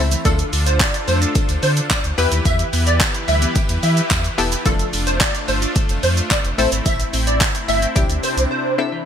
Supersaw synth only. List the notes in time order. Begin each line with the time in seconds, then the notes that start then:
Already playing: A3 C4 E4
0.25 D3 D4 F4 A4
2.18 E3 E4 G4 B4
4.66 A3 D4 F4
6.58 C4 E4
7.96 C3 D4